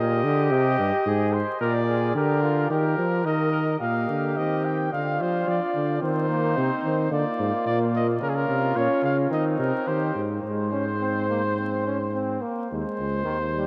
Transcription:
Already playing: A#2 G4
0.00 D#5
0.24 D3
0.51 C3 D#5
0.79 G2
1.06 G#2 G#4
1.33 C5
1.61 A#2 A#4 D5
1.89 G#4
2.15 D3 G4 A#4
2.43 F4
2.70 D#3 G4 A#4
2.98 F3
3.25 D#3 A#4 D#5
3.51 A#4
3.79 A#2 A#3 G4 F5
4.09 D3
4.37 D#3 C4 D#5
4.65 G5
4.91 D3 D4 F4 F5
5.21 F3 C5
5.48 F3 D5
5.75 D3
6.02 D#3 C4 D#4 C5
6.29 A#3
6.56 C3 C4
6.85 D#3
7.11 D3 A#3 F4 D5
7.39 G#2
7.66 A#2 D5
7.95 D#5
8.21 C#3 C#4 F4 A#4
8.29 G#4
8.36 A#4
8.48 C3
8.76 A#2 C#4 C#5
9.03 C#3 F5
9.30 D#3 C4 D#4 D#5
9.59 C3 A#4
9.87 D#3 G4 C5
10.15 G#2
10.42 G#2 G#3 C5
10.72 C#4
11.01 C4
11.29 A#3
11.57 C4
11.86 C#4
12.13 C4
12.42 A#3
12.71 D#2 G#3 C5
12.99 C#2
13.25 D#2 D#3
13.53 G3

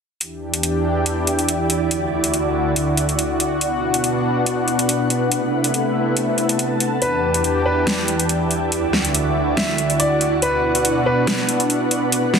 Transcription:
0.21 E2 E3 D4 E4 G4, closed hi-hat
0.43 G5
0.54 closed hi-hat
0.63 D5, closed hi-hat
1.06 closed hi-hat
1.27 closed hi-hat
1.39 closed hi-hat
1.49 closed hi-hat
1.70 closed hi-hat
1.91 D2 D3 E4 F#4, closed hi-hat
2.24 closed hi-hat
2.34 closed hi-hat
2.68 F#5
2.76 closed hi-hat
2.97 closed hi-hat
3.09 closed hi-hat
3.19 closed hi-hat
3.40 closed hi-hat
3.61 B2 B3 D4, closed hi-hat
3.94 closed hi-hat
3.98 B4
4.04 closed hi-hat
4.46 closed hi-hat
4.68 closed hi-hat
4.79 closed hi-hat
4.89 closed hi-hat
5.10 closed hi-hat
5.32 C3 A3 E4, closed hi-hat
5.64 closed hi-hat
5.74 closed hi-hat
6.09 A5
6.17 closed hi-hat
6.38 closed hi-hat
6.49 closed hi-hat
6.59 closed hi-hat
6.80 closed hi-hat
7.02 E2 E3 D4 E4 G4 B4, closed hi-hat
7.34 closed hi-hat
7.44 closed hi-hat
7.66 B4 D5
7.79 G5
7.87 snare, closed hi-hat
8.08 closed hi-hat
8.20 closed hi-hat
8.29 closed hi-hat
8.51 closed hi-hat
8.72 D2 D3 E4 F#4, closed hi-hat
8.93 snare
9.05 closed hi-hat
9.12 F#5, closed hi-hat
9.57 E5, snare, closed hi-hat
9.78 closed hi-hat
9.90 closed hi-hat
10.00 D5, closed hi-hat
10.21 closed hi-hat
10.42 B2 B3 D4 B4, closed hi-hat
10.75 closed hi-hat
10.85 closed hi-hat
11.06 B4
11.19 B4
11.27 snare, closed hi-hat
11.49 closed hi-hat
11.60 closed hi-hat
11.70 closed hi-hat
11.91 closed hi-hat
12.12 C3 A3 E4, closed hi-hat
12.34 snare

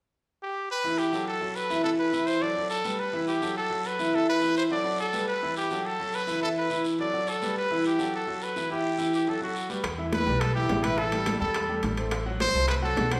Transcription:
0.43 G4
0.70 B4, long guiro
0.84 E3 E4 E5
0.98 G4, short guiro
1.13 F#3 F#4 A4, short guiro
1.27 A4, long guiro
1.41 F#3 F#4 A4
1.56 B4, short guiro
1.70 E3 E4 E5, short guiro
1.84 E3 E4 A4 E5, long guiro
1.99 B4
2.13 E3 E4 E5, short guiro
2.27 C5, short guiro
2.42 F#3 F#4 A4 D5, long guiro
2.56 F#3 F#4 A4
2.70 A4, short guiro
2.84 G3 G4 B4, short guiro
2.99 B4, long guiro
3.13 E3 E4 E5
3.28 G4, short guiro
3.42 F#3 F#4 A4, short guiro
3.56 A4, long guiro
3.70 F#3 F#4 A4
3.85 B4, short guiro
3.99 E3 E4 E5, short guiro
4.13 E3 E4 A4 E5, long guiro
4.29 B4
4.42 E3 E4 E5, short guiro
4.56 C5, short guiro
4.70 F#3 F#4 A4 D5, long guiro
4.84 F#3 F#4 A4
4.99 A4, short guiro
5.13 G3 G4 B4, short guiro
5.28 B4, long guiro
5.43 E3 E4 E5
5.56 G4, short guiro
5.71 F#3 F#4 A4, short guiro
5.85 A4, long guiro
6.00 F#3 F#4 A4
6.13 B4, short guiro
6.27 E3 E4 E5, short guiro
6.42 E3 E4 A4 E5, long guiro
6.58 B4
6.70 E3 E4 E5, short guiro
6.84 short guiro
6.99 F#3 F#4 A4 D5, long guiro
7.13 F#3 F#4 A4
7.27 A4, short guiro
7.42 G3 G4 B4, short guiro
7.56 B4, long guiro
7.71 E3 E4 E5
7.85 G4, short guiro
7.99 F#3 F#4 A4, short guiro
8.13 A4, long guiro
8.27 F#3 F#4 A4
8.42 B4, short guiro
8.56 E3 E4 E5, short guiro
8.70 E3 E4 G4 E5, long guiro
8.98 E3 E4 E5, short guiro
9.13 G4, short guiro
9.27 F#3 F#4 A4, long guiro
9.41 F#3 F#4 A4
9.56 short guiro
9.70 G3 G4 B4, short guiro
9.84 E2, high bongo, high conga, high timbale
9.98 E3 E4 E5, high conga
10.13 B4, high bongo, high conga, high timbale
10.26 B1 G3 G4 B4, high bongo, high conga
10.40 A4, high bongo, high conga, high timbale
10.55 E3 E4 G4 E5, high bongo, high conga
10.69 A1, high bongo, low bongo, high conga, high timbale, low timbale
10.84 E3 E4 B4 E5, high bongo, high timbale
10.98 E3 E4 A4 E5, high bongo, high conga
11.12 G3 G4 A4, high conga, high timbale
11.26 high bongo, high conga, high timbale
11.40 E2 G3 G4 A4, high bongo, high conga
11.54 high bongo, high conga, high timbale
11.69 G3 G4 A4, high bongo, high conga
11.83 A1, high bongo, low bongo, high conga, high timbale
11.97 A3 A4 C5, high bongo, high timbale
12.11 high bongo, high conga, high timbale
12.26 F#3 F#4 F#5, high conga
12.40 C5, high bongo, high conga, high timbale
12.54 C2 A3 A4 C5, high bongo, high conga
12.68 B4, high bongo, high conga, high timbale
12.82 F#3 F#4 A4 F#5, high bongo, high conga
12.97 B1, high bongo, low bongo, high conga, high timbale, low timbale
13.11 F#3 F#4 C5 F#5, high bongo, high conga, high timbale

